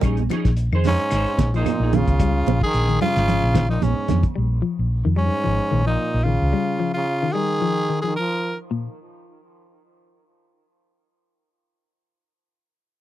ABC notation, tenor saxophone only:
X:1
M:4/4
L:1/16
Q:"Swing 16ths" 1/4=110
K:Bbdor
V:1 name="Tenor saxophone"
z6 D4- D E3 F2- | F3 A3 F4- F E D3 z | z6 D4- D E3 F2- | F3 F3 A4- A A B3 z |
z16 | z16 |]